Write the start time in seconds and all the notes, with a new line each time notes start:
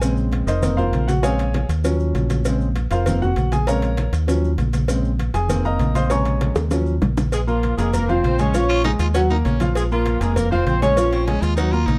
Already playing: A#1 G#5
0.01 C#3 G#3 C4, cowbell, maracas
0.17 high conga, maracas
0.32 cowbell, high conga, maracas
0.47 F1 D#4 A#4 C5 D#5, cowbell, high conga, maracas
0.62 D#3 A#3 C4, cowbell, high conga, low conga, maracas
0.77 F4 A#4 C5 F5, high conga, low conga, maracas
0.92 A#1, cowbell, high conga, maracas
1.08 F#4 F#5, cowbell, high conga, maracas
1.22 C#3 G#3 C4 G#4 C#5 F5 G#5, cowbell, high conga, maracas
1.39 cowbell, high conga, maracas
1.54 cowbell, high conga, maracas
1.69 D#2, cowbell, high conga, maracas
1.84 F3 F#3 C#4, cowbell, high conga, maracas
2.00 high conga, maracas
2.15 A#1, cowbell, high conga, maracas
2.30 cowbell, high conga, maracas
2.45 C#3 G#3 C4, cowbell, maracas
2.61 high conga, maracas
2.76 cowbell, high conga, maracas
2.91 F1 F4 A#4 C5 F5, cowbell, high conga, maracas
3.06 D#3 A#3 C4, cowbell, high conga, low conga, maracas
3.22 F#4 F#5, high conga, low conga, maracas
3.36 A#1, cowbell, high conga, maracas
3.52 G#4 G#5, cowbell, high conga, maracas
3.67 C#3 G#3 C4 A#4 C#5 F5 A#5, cowbell, maracas
3.82 cowbell, high conga, maracas
3.97 cowbell, high conga, maracas
4.12 D#2, cowbell, high conga, maracas
4.27 F3 F#3 C#4, cowbell, high conga, maracas
4.44 high conga, maracas
4.58 A#1, cowbell, high conga, maracas
4.73 cowbell, high conga, maracas
4.88 C#3 G#3 C4, cowbell, high conga, maracas
5.05 high conga, maracas
5.19 cowbell, high conga, maracas
5.34 F1 G#4 G#5, cowbell, high conga, maracas
5.48 D#3 A#3 C4, cowbell, high conga, low conga, maracas
5.65 A#4 D#5 F5 A#5, high conga, maracas
5.79 A#1, cowbell, high conga, maracas
5.95 C5 D#5 F5 C6, cowbell, high conga, maracas
6.06 C#3 C6, cowbell
6.10 C3 G#3 C#5 G#5 A#5 C#6, maracas
6.25 cowbell, high conga, maracas
6.41 cowbell, high conga, maracas
6.55 D#2, cowbell, high bongo, high conga, maracas
6.71 F3 F#3 C#4, cowbell, high bongo, high conga, maracas
6.86 high conga, maracas
7.01 A#1, cowbell, low bongo, high conga, maracas
7.17 cowbell, low bongo, high conga, maracas
7.32 G#3 G#4, cowbell, high conga, maracas
7.47 F3 A#3 F4 A#4 A#5, high conga, maracas
7.63 cowbell, high conga, maracas
7.78 F1 G#3 A#3 G#4 A#4 A#5, cowbell, high conga, maracas
7.94 A#3 A#4, cowbell, high conga, low conga, maracas
8.08 F3 C4 F4 C5 F5, high conga, low conga, maracas
8.23 A#1 C4 C5, cowbell, high conga, maracas
8.39 G#3 C#4 G#4 C#5 G#5, cowbell, high conga, maracas
8.54 F3 F4 F5, cowbell, high conga, maracas
8.69 F4, cowbell, high conga, maracas
8.84 G#3 D#4 G#4 G#5, cowbell, high conga, maracas
8.99 D#2 F4, cowbell, high conga, maracas
9.14 F#3 C#4 F#4 F#5, cowbell, high conga, maracas
9.30 A#3 D#4 A#4 A#5, high conga, maracas
9.44 A#1 C#4, cowbell, high conga, maracas
9.60 F3 F4 F5, cowbell, high conga, maracas
9.75 G#3 G#4, cowbell, high conga, maracas
9.91 F3 A#3 F4 A#4 A#5, high conga, maracas
10.06 cowbell, high conga, maracas
10.21 F1 G#3 A#3 G#4 A#4 A#5, cowbell, high conga, maracas
10.36 A#3 A#4, cowbell, high conga, low conga, maracas
10.51 F3 C4 F4 C5 F5, high conga, low conga, maracas
10.66 A#1 C4 C5, cowbell, high conga, maracas
10.82 G#3 C#4 G#4 C#5 G#5, cowbell, high conga, maracas
10.97 F3 F4 F5, cowbell, maracas
11.11 C4, cowbell, high conga, maracas
11.26 G#3 C#4 G#4 G#5, cowbell, high conga, maracas
11.41 D#2 F4, cowbell, high conga, maracas
11.56 F#3 D#4 F#4 F#5, cowbell, high conga, maracas
11.72 A#3 F4 A#4 A#5, high conga, maracas
11.86 A#1 D#4, cowbell, high conga, maracas